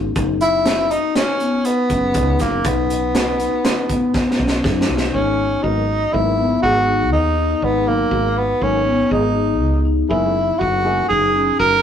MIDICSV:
0, 0, Header, 1, 6, 480
1, 0, Start_track
1, 0, Tempo, 496689
1, 158, Time_signature, 5, 2, 24, 8
1, 11424, End_track
2, 0, Start_track
2, 0, Title_t, "Marimba"
2, 0, Program_c, 0, 12
2, 0, Note_on_c, 0, 66, 67
2, 102, Note_off_c, 0, 66, 0
2, 155, Note_on_c, 0, 63, 77
2, 529, Note_off_c, 0, 63, 0
2, 638, Note_on_c, 0, 66, 74
2, 825, Note_off_c, 0, 66, 0
2, 873, Note_on_c, 0, 63, 65
2, 1248, Note_off_c, 0, 63, 0
2, 1358, Note_on_c, 0, 59, 62
2, 1731, Note_off_c, 0, 59, 0
2, 1839, Note_on_c, 0, 61, 64
2, 2026, Note_off_c, 0, 61, 0
2, 2074, Note_on_c, 0, 63, 70
2, 2262, Note_off_c, 0, 63, 0
2, 2322, Note_on_c, 0, 66, 61
2, 2508, Note_off_c, 0, 66, 0
2, 2558, Note_on_c, 0, 63, 76
2, 2932, Note_off_c, 0, 63, 0
2, 3038, Note_on_c, 0, 66, 67
2, 3226, Note_off_c, 0, 66, 0
2, 3281, Note_on_c, 0, 63, 60
2, 3654, Note_off_c, 0, 63, 0
2, 3770, Note_on_c, 0, 59, 64
2, 4140, Note_off_c, 0, 59, 0
2, 4248, Note_on_c, 0, 61, 65
2, 4432, Note_off_c, 0, 61, 0
2, 4491, Note_on_c, 0, 63, 69
2, 4674, Note_off_c, 0, 63, 0
2, 4726, Note_on_c, 0, 66, 62
2, 4911, Note_off_c, 0, 66, 0
2, 4967, Note_on_c, 0, 63, 73
2, 5339, Note_off_c, 0, 63, 0
2, 5442, Note_on_c, 0, 66, 72
2, 5816, Note_off_c, 0, 66, 0
2, 5924, Note_on_c, 0, 63, 67
2, 6110, Note_off_c, 0, 63, 0
2, 6165, Note_on_c, 0, 59, 63
2, 6351, Note_off_c, 0, 59, 0
2, 6406, Note_on_c, 0, 68, 72
2, 6592, Note_off_c, 0, 68, 0
2, 6640, Note_on_c, 0, 63, 68
2, 7015, Note_off_c, 0, 63, 0
2, 7366, Note_on_c, 0, 63, 75
2, 7739, Note_off_c, 0, 63, 0
2, 7840, Note_on_c, 0, 66, 72
2, 8215, Note_off_c, 0, 66, 0
2, 8322, Note_on_c, 0, 63, 75
2, 8509, Note_off_c, 0, 63, 0
2, 8564, Note_on_c, 0, 59, 65
2, 8750, Note_off_c, 0, 59, 0
2, 8800, Note_on_c, 0, 68, 76
2, 8988, Note_off_c, 0, 68, 0
2, 9032, Note_on_c, 0, 63, 67
2, 9409, Note_off_c, 0, 63, 0
2, 9519, Note_on_c, 0, 63, 68
2, 9707, Note_off_c, 0, 63, 0
2, 9758, Note_on_c, 0, 64, 83
2, 10133, Note_off_c, 0, 64, 0
2, 10238, Note_on_c, 0, 66, 72
2, 10612, Note_off_c, 0, 66, 0
2, 10717, Note_on_c, 0, 63, 74
2, 10906, Note_off_c, 0, 63, 0
2, 10963, Note_on_c, 0, 61, 69
2, 11149, Note_off_c, 0, 61, 0
2, 11202, Note_on_c, 0, 66, 79
2, 11388, Note_off_c, 0, 66, 0
2, 11424, End_track
3, 0, Start_track
3, 0, Title_t, "Tenor saxophone"
3, 0, Program_c, 1, 66
3, 400, Note_on_c, 1, 64, 98
3, 881, Note_on_c, 1, 63, 86
3, 895, Note_off_c, 1, 64, 0
3, 1116, Note_off_c, 1, 63, 0
3, 1122, Note_on_c, 1, 61, 87
3, 1600, Note_on_c, 1, 59, 86
3, 1614, Note_off_c, 1, 61, 0
3, 2329, Note_on_c, 1, 58, 76
3, 2344, Note_off_c, 1, 59, 0
3, 2571, Note_on_c, 1, 59, 79
3, 2586, Note_off_c, 1, 58, 0
3, 4488, Note_off_c, 1, 59, 0
3, 4962, Note_on_c, 1, 61, 84
3, 5438, Note_on_c, 1, 63, 88
3, 5453, Note_off_c, 1, 61, 0
3, 5924, Note_on_c, 1, 64, 95
3, 5939, Note_off_c, 1, 63, 0
3, 6395, Note_off_c, 1, 64, 0
3, 6401, Note_on_c, 1, 66, 93
3, 6849, Note_off_c, 1, 66, 0
3, 6884, Note_on_c, 1, 63, 85
3, 7381, Note_on_c, 1, 59, 80
3, 7395, Note_off_c, 1, 63, 0
3, 7611, Note_on_c, 1, 58, 86
3, 7625, Note_off_c, 1, 59, 0
3, 8092, Note_on_c, 1, 59, 74
3, 8107, Note_off_c, 1, 58, 0
3, 8338, Note_on_c, 1, 61, 84
3, 8352, Note_off_c, 1, 59, 0
3, 8807, Note_off_c, 1, 61, 0
3, 8813, Note_on_c, 1, 63, 78
3, 9489, Note_off_c, 1, 63, 0
3, 9757, Note_on_c, 1, 64, 87
3, 10236, Note_on_c, 1, 66, 93
3, 10251, Note_off_c, 1, 64, 0
3, 10709, Note_off_c, 1, 66, 0
3, 10714, Note_on_c, 1, 68, 98
3, 11164, Note_off_c, 1, 68, 0
3, 11202, Note_on_c, 1, 70, 106
3, 11424, Note_off_c, 1, 70, 0
3, 11424, End_track
4, 0, Start_track
4, 0, Title_t, "Grand piano"
4, 0, Program_c, 2, 0
4, 5436, Note_on_c, 2, 54, 50
4, 5440, Note_on_c, 2, 58, 45
4, 5448, Note_on_c, 2, 59, 46
4, 5455, Note_on_c, 2, 63, 51
4, 5608, Note_off_c, 2, 54, 0
4, 5610, Note_off_c, 2, 58, 0
4, 5614, Note_off_c, 2, 59, 0
4, 5618, Note_off_c, 2, 63, 0
4, 5913, Note_on_c, 2, 54, 53
4, 5924, Note_on_c, 2, 58, 48
4, 5926, Note_on_c, 2, 59, 48
4, 5931, Note_on_c, 2, 75, 58
4, 6255, Note_off_c, 2, 54, 0
4, 6260, Note_off_c, 2, 58, 0
4, 6261, Note_off_c, 2, 59, 0
4, 6264, Note_off_c, 2, 75, 0
4, 7599, Note_on_c, 2, 54, 60
4, 7604, Note_on_c, 2, 58, 52
4, 7611, Note_on_c, 2, 47, 54
4, 7618, Note_on_c, 2, 63, 63
4, 7938, Note_off_c, 2, 54, 0
4, 7940, Note_off_c, 2, 58, 0
4, 7944, Note_off_c, 2, 47, 0
4, 7947, Note_off_c, 2, 63, 0
4, 8320, Note_on_c, 2, 54, 58
4, 8325, Note_on_c, 2, 58, 52
4, 8332, Note_on_c, 2, 59, 51
4, 8336, Note_on_c, 2, 61, 62
4, 8490, Note_off_c, 2, 54, 0
4, 8493, Note_off_c, 2, 58, 0
4, 8496, Note_off_c, 2, 59, 0
4, 8498, Note_off_c, 2, 61, 0
4, 9749, Note_on_c, 2, 56, 67
4, 9753, Note_on_c, 2, 58, 59
4, 9762, Note_on_c, 2, 61, 60
4, 9767, Note_on_c, 2, 64, 71
4, 9924, Note_off_c, 2, 56, 0
4, 9926, Note_off_c, 2, 58, 0
4, 9931, Note_off_c, 2, 61, 0
4, 9933, Note_off_c, 2, 64, 0
4, 10474, Note_on_c, 2, 56, 54
4, 10477, Note_on_c, 2, 58, 48
4, 10484, Note_on_c, 2, 61, 51
4, 10490, Note_on_c, 2, 64, 58
4, 10647, Note_off_c, 2, 56, 0
4, 10648, Note_off_c, 2, 58, 0
4, 10651, Note_off_c, 2, 61, 0
4, 10654, Note_off_c, 2, 64, 0
4, 11424, End_track
5, 0, Start_track
5, 0, Title_t, "Fretless electric bass"
5, 0, Program_c, 3, 35
5, 0, Note_on_c, 3, 32, 78
5, 110, Note_off_c, 3, 32, 0
5, 151, Note_on_c, 3, 30, 86
5, 937, Note_off_c, 3, 30, 0
5, 1836, Note_on_c, 3, 30, 75
5, 2074, Note_on_c, 3, 37, 85
5, 2089, Note_off_c, 3, 30, 0
5, 2272, Note_off_c, 3, 37, 0
5, 2317, Note_on_c, 3, 30, 84
5, 2514, Note_off_c, 3, 30, 0
5, 2559, Note_on_c, 3, 35, 82
5, 3343, Note_off_c, 3, 35, 0
5, 4246, Note_on_c, 3, 35, 77
5, 4441, Note_off_c, 3, 35, 0
5, 4487, Note_on_c, 3, 42, 75
5, 4681, Note_off_c, 3, 42, 0
5, 4726, Note_on_c, 3, 35, 69
5, 4921, Note_off_c, 3, 35, 0
5, 4968, Note_on_c, 3, 32, 82
5, 5358, Note_off_c, 3, 32, 0
5, 5448, Note_on_c, 3, 32, 87
5, 5838, Note_off_c, 3, 32, 0
5, 5933, Note_on_c, 3, 32, 87
5, 6321, Note_off_c, 3, 32, 0
5, 6409, Note_on_c, 3, 32, 90
5, 6890, Note_off_c, 3, 32, 0
5, 6890, Note_on_c, 3, 39, 88
5, 7279, Note_off_c, 3, 39, 0
5, 7366, Note_on_c, 3, 32, 82
5, 7757, Note_off_c, 3, 32, 0
5, 7839, Note_on_c, 3, 32, 88
5, 8233, Note_off_c, 3, 32, 0
5, 8325, Note_on_c, 3, 32, 85
5, 8716, Note_off_c, 3, 32, 0
5, 8804, Note_on_c, 3, 32, 89
5, 9287, Note_off_c, 3, 32, 0
5, 9287, Note_on_c, 3, 37, 95
5, 9677, Note_off_c, 3, 37, 0
5, 9765, Note_on_c, 3, 30, 91
5, 10156, Note_off_c, 3, 30, 0
5, 10251, Note_on_c, 3, 30, 92
5, 10639, Note_off_c, 3, 30, 0
5, 10729, Note_on_c, 3, 30, 91
5, 11118, Note_off_c, 3, 30, 0
5, 11204, Note_on_c, 3, 30, 101
5, 11424, Note_off_c, 3, 30, 0
5, 11424, End_track
6, 0, Start_track
6, 0, Title_t, "Drums"
6, 151, Note_on_c, 9, 42, 65
6, 154, Note_on_c, 9, 36, 95
6, 247, Note_off_c, 9, 42, 0
6, 250, Note_off_c, 9, 36, 0
6, 393, Note_on_c, 9, 42, 49
6, 490, Note_off_c, 9, 42, 0
6, 633, Note_on_c, 9, 38, 92
6, 633, Note_on_c, 9, 42, 64
6, 730, Note_off_c, 9, 38, 0
6, 730, Note_off_c, 9, 42, 0
6, 877, Note_on_c, 9, 42, 47
6, 974, Note_off_c, 9, 42, 0
6, 1116, Note_on_c, 9, 38, 89
6, 1116, Note_on_c, 9, 42, 70
6, 1213, Note_off_c, 9, 38, 0
6, 1213, Note_off_c, 9, 42, 0
6, 1353, Note_on_c, 9, 42, 47
6, 1450, Note_off_c, 9, 42, 0
6, 1592, Note_on_c, 9, 42, 68
6, 1688, Note_off_c, 9, 42, 0
6, 1832, Note_on_c, 9, 42, 55
6, 1835, Note_on_c, 9, 36, 66
6, 1929, Note_off_c, 9, 42, 0
6, 1932, Note_off_c, 9, 36, 0
6, 2069, Note_on_c, 9, 42, 74
6, 2075, Note_on_c, 9, 36, 97
6, 2166, Note_off_c, 9, 42, 0
6, 2172, Note_off_c, 9, 36, 0
6, 2311, Note_on_c, 9, 38, 28
6, 2311, Note_on_c, 9, 42, 52
6, 2317, Note_on_c, 9, 36, 58
6, 2407, Note_off_c, 9, 38, 0
6, 2407, Note_off_c, 9, 42, 0
6, 2414, Note_off_c, 9, 36, 0
6, 2554, Note_on_c, 9, 42, 77
6, 2559, Note_on_c, 9, 36, 100
6, 2651, Note_off_c, 9, 42, 0
6, 2655, Note_off_c, 9, 36, 0
6, 2804, Note_on_c, 9, 42, 56
6, 2901, Note_off_c, 9, 42, 0
6, 3042, Note_on_c, 9, 38, 94
6, 3042, Note_on_c, 9, 42, 74
6, 3139, Note_off_c, 9, 38, 0
6, 3139, Note_off_c, 9, 42, 0
6, 3282, Note_on_c, 9, 42, 51
6, 3378, Note_off_c, 9, 42, 0
6, 3524, Note_on_c, 9, 38, 93
6, 3524, Note_on_c, 9, 42, 72
6, 3620, Note_off_c, 9, 38, 0
6, 3620, Note_off_c, 9, 42, 0
6, 3762, Note_on_c, 9, 42, 51
6, 3764, Note_on_c, 9, 36, 61
6, 3859, Note_off_c, 9, 42, 0
6, 3861, Note_off_c, 9, 36, 0
6, 4000, Note_on_c, 9, 38, 52
6, 4004, Note_on_c, 9, 36, 89
6, 4096, Note_off_c, 9, 38, 0
6, 4101, Note_off_c, 9, 36, 0
6, 4165, Note_on_c, 9, 38, 49
6, 4261, Note_off_c, 9, 38, 0
6, 4324, Note_on_c, 9, 38, 63
6, 4420, Note_off_c, 9, 38, 0
6, 4486, Note_on_c, 9, 36, 94
6, 4487, Note_on_c, 9, 38, 60
6, 4583, Note_off_c, 9, 36, 0
6, 4584, Note_off_c, 9, 38, 0
6, 4649, Note_on_c, 9, 38, 73
6, 4745, Note_off_c, 9, 38, 0
6, 4807, Note_on_c, 9, 38, 65
6, 4904, Note_off_c, 9, 38, 0
6, 11424, End_track
0, 0, End_of_file